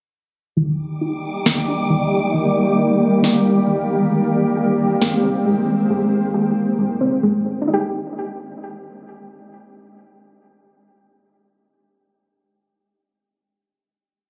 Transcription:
0.56 5.86 D#3 medium
0.56 1.45 D#3 medium
0.56 4.08 G3 medium
0.56 5.86 A#3 medium
0.56 4.08 D#4 medium
0.56 5.86 G4 medium
0.56 4.08 G4 medium
0.56 4.08 D5 medium
0.56 4.08 D6 medium
1.01 2.34 D#4 medium
1.46 1.89 D#3 medium
1.46 snare loud
1.68 3.01 D4 medium
1.90 2.33 D#3 medium
2.34 3.21 D#3 medium
2.78 4.12 D#4 medium
3.22 3.66 D#3 medium
3.22 snare loud
3.46 4.12 D4 medium
3.67 4.12 D#3 medium
4.12 5.00 G#3 medium
4.12 5.88 G#3 medium
4.12 5.88 C4 medium
4.57 5.90 G4 medium
5.01 5.44 G#3 medium
5.01 snare loud
5.23 6.57 C4 medium
5.45 5.89 G#3 medium
5.90 6.78 G#3 medium
6.34 7.67 G4 medium
6.79 7.22 G#3 medium
7.01 7.67 C4 medium
7.23 7.68 G#3 medium
7.62 12.06 D4 medium
7.68 12.12 D#4 medium
7.74 12.18 G4 medium

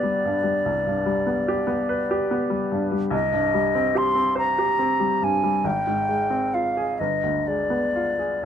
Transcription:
0.00 0.62 C2 soft
0.00 0.25 G2 soft
0.00 0.03 G3 soft
0.00 0.37 G3 soft
0.00 1.27 B3 soft
0.00 1.48 G4 soft
0.00 1.89 B4 soft
0.00 2.86 D5 soft
0.25 0.58 G2 soft
0.43 0.77 G3 soft
0.66 3.09 C2 soft
0.86 1.19 G2 soft
1.06 1.39 G3 soft
1.27 1.60 B3 soft
1.48 1.82 G4 soft
1.67 2.01 B3 soft
1.89 2.23 B4 soft
2.11 2.44 G4 soft
2.31 2.64 B3 soft
2.50 2.84 G3 soft
2.72 3.05 G2 soft
2.91 3.13 G3 soft
3.11 5.58 C2 soft
3.11 3.99 D#5 medium
3.32 3.66 G2 soft
3.54 3.87 G3 soft
3.75 4.08 C4 soft
3.95 4.28 G4 soft
3.95 4.37 C6 medium
4.15 4.49 C4 soft
4.35 4.69 C5 soft
4.35 5.25 A#5 medium
4.58 4.91 G4 soft
4.79 5.12 C4 soft
5.00 5.34 G3 soft
5.22 5.56 G2 soft
5.22 5.68 G#5 medium
5.43 5.64 G3 soft
5.64 6.94 G#1 soft
5.64 6.56 G5 medium
5.87 6.22 G#2 soft
6.09 6.44 G#3 soft
6.30 6.66 C4 soft
6.54 6.90 F4 soft
6.54 7.01 F5 medium
6.77 6.99 G#4 soft
6.99 8.40 G1 soft
6.99 7.49 D#5 soft
7.23 7.60 D2 soft
7.47 7.85 G#3 soft
7.47 8.45 D5 soft
7.70 8.08 B3 soft
7.96 8.34 F4 soft
8.19 8.44 G#4 soft

